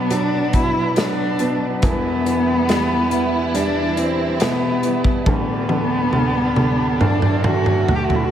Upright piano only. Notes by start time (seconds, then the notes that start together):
Already playing: B1 B2 F#3
0.10 F#3
0.54 B2
0.97 F#3
1.40 B2
1.83 E1 E2
2.26 E3
2.68 G3
3.11 E3
3.54 G3
3.97 E3
4.40 B2
4.84 E3
5.26 D1 D2
5.69 D3
6.13 D2
6.57 D3
7.00 D1 D2
7.45 D3
7.88 A3